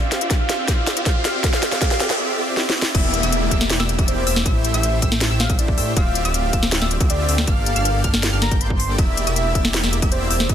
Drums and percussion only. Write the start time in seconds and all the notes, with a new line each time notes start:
0.12 snare, closed hi-hat
0.21 closed hi-hat
0.30 kick, snare, closed hi-hat
0.49 snare, closed hi-hat
0.68 kick, snare, closed hi-hat
0.87 snare, closed hi-hat
0.97 closed hi-hat
1.06 kick, snare, closed hi-hat
1.25 snare, closed hi-hat
1.44 kick, snare, closed hi-hat
1.53 snare
1.63 snare, closed hi-hat
1.72 snare, closed hi-hat
1.81 kick, snare, closed hi-hat
1.91 snare
2.00 snare, closed hi-hat
2.10 snare
2.57 snare
2.70 snare
2.82 snare
2.95 kick, closed hi-hat, crash
3.14 closed hi-hat
3.23 closed hi-hat
3.32 closed hi-hat
3.51 kick, closed hi-hat
3.61 snare
3.70 snare, closed hi-hat
3.80 snare
3.89 closed hi-hat
3.99 kick, closed hi-hat
4.08 closed hi-hat
4.27 open hi-hat
4.36 snare
4.46 kick, closed hi-hat
4.65 closed hi-hat
4.74 closed hi-hat
4.83 closed hi-hat
5.02 kick, closed hi-hat
5.12 snare
5.21 snare, closed hi-hat
5.40 snare, closed hi-hat
5.50 kick, closed hi-hat
5.59 closed hi-hat
5.68 kick
5.78 open hi-hat
5.97 kick, closed hi-hat
6.15 closed hi-hat
6.25 closed hi-hat
6.34 closed hi-hat
6.53 kick, closed hi-hat
6.63 snare
6.72 snare, closed hi-hat
6.82 snare
6.91 closed hi-hat
7.00 kick, closed hi-hat
7.10 closed hi-hat
7.29 open hi-hat
7.38 snare
7.47 kick, closed hi-hat
7.66 closed hi-hat
7.76 closed hi-hat
7.85 closed hi-hat
8.04 kick, closed hi-hat
8.14 snare
8.23 snare, closed hi-hat
8.42 snare, closed hi-hat
8.51 kick, closed hi-hat
8.61 closed hi-hat
8.70 kick
8.80 open hi-hat
8.98 kick, closed hi-hat
9.17 closed hi-hat
9.27 closed hi-hat
9.36 closed hi-hat
9.55 kick, closed hi-hat
9.65 snare
9.74 snare, closed hi-hat
9.84 snare
9.93 closed hi-hat
10.02 kick, closed hi-hat
10.12 closed hi-hat
10.31 open hi-hat
10.40 snare
10.49 kick, closed hi-hat